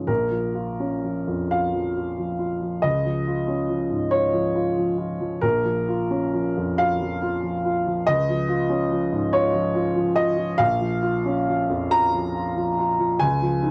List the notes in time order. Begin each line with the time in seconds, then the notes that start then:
Already playing: G#2 F3 F#3 C#4 D#4
0.07 A#1 A#4
0.31 F3
0.54 F4
0.80 C#4
1.04 F3
1.27 F2
1.51 F4 F5
1.75 F3
1.97 F4
2.19 F3
2.39 F4
2.62 F3
2.82 C#2 D#5
3.05 F3
3.27 F4
3.48 C#4
3.69 F3
3.91 G#2
4.11 F4 C#5
4.33 F3
4.55 F4
4.77 F3
4.98 F4
5.20 F3
5.41 A#1 A#4
5.64 F3
5.88 F4
6.10 C#4
6.34 F3
6.57 F2
6.78 F4 F5
7.01 F3
7.22 F4
7.43 F3
7.65 F4
7.87 F3
8.06 C#2 D#5
8.29 F3
8.49 F4
8.70 C#4
8.91 F3
9.12 G#2
9.33 F4 C#5
9.54 F3
9.75 F4
9.96 F3
10.16 F4 D#5
10.38 F3
10.58 A#1 F5
10.81 F3
11.02 F4
11.26 C#4
11.48 F3
11.70 F2
11.91 F4 A#5
12.14 F3
12.35 F4
12.56 F3
12.79 F4
12.99 F3
13.19 C#2 G#5
13.42 F3
13.62 D#4